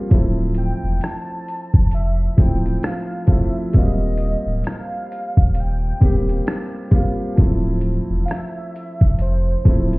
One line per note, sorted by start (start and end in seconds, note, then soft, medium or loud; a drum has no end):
0.00 0.09 F3 soft
0.00 0.13 G3 medium
0.00 0.13 A#3 medium
0.00 0.12 C4 medium
0.00 0.14 F4 medium
0.09 0.72 D1 loud
0.09 1.60 F3 medium
0.09 1.60 A3 medium
0.09 1.61 C4 medium
0.09 kick loud
0.09 closed hi-hat medium
0.14 1.62 E4 medium
0.55 1.04 G5 loud
0.55 closed hi-hat medium
0.84 1.00 E1 medium
1.01 1.93 A5 loud
1.01 cross-stick loud
1.01 closed hi-hat medium
1.48 closed hi-hat medium
1.74 2.29 F1 medium
1.74 kick medium
1.91 2.36 E5 loud
1.91 closed hi-hat medium
2.37 2.77 D1 medium
2.37 3.14 F3 medium
2.37 3.15 A3 medium
2.37 3.16 C4 medium
2.37 2.87 G5 loud
2.37 kick loud
2.37 closed hi-hat medium
2.42 3.16 E4 medium
2.66 closed hi-hat soft
2.83 3.33 F5 loud
2.83 cross-stick loud
2.83 closed hi-hat medium
3.26 3.51 F1 medium
3.26 3.66 F3 medium
3.26 3.67 A3 medium
3.26 3.67 C4 medium
3.26 kick loud
3.26 closed hi-hat medium
3.31 3.68 E4 medium
3.31 3.78 E5 medium
3.73 4.35 D#1 loud
3.73 3.81 F#3 medium
3.73 5.24 A#3 medium
3.73 5.25 C4 medium
3.73 kick medium
3.73 closed hi-hat medium
3.77 5.27 G3 medium
3.77 5.26 F4 medium
3.77 4.67 D#5 medium
4.18 closed hi-hat medium
4.46 4.63 D1 medium
4.64 cross-stick loud
4.64 closed hi-hat medium
4.69 5.61 F5 loud
5.12 closed hi-hat medium
5.37 5.92 D#1 medium
5.37 kick medium
5.55 closed hi-hat medium
5.60 6.49 G5 medium
6.01 6.40 D#1 medium
6.01 6.78 G3 medium
6.01 6.79 A#3 medium
6.01 6.79 C4 medium
6.01 kick loud
6.01 closed hi-hat medium
6.05 6.80 G4 medium
6.29 closed hi-hat soft
6.47 cross-stick loud
6.47 closed hi-hat medium
6.91 7.30 G3 medium
6.91 7.31 A#3 medium
6.91 7.32 C4 medium
6.91 kick medium
6.91 closed hi-hat medium
6.95 7.32 F4 medium
7.36 7.99 D1 loud
7.36 8.87 F3 medium
7.36 8.87 A3 medium
7.36 8.88 C4 medium
7.36 kick loud
7.36 closed hi-hat medium
7.41 8.89 E4 medium
7.81 closed hi-hat medium
8.10 8.26 E1 medium
8.25 8.32 F5 medium
8.25 closed hi-hat medium
8.31 9.21 E5 loud
8.31 cross-stick loud
8.76 closed hi-hat medium
9.01 9.56 F1 medium
9.01 kick medium
9.19 9.99 C5 medium
9.19 closed hi-hat medium
9.65 9.99 D1 medium
9.65 9.99 F3 medium
9.65 9.99 A3 medium
9.65 9.99 C4 medium
9.65 kick medium
9.65 closed hi-hat medium
9.69 9.99 E4 medium
9.93 closed hi-hat soft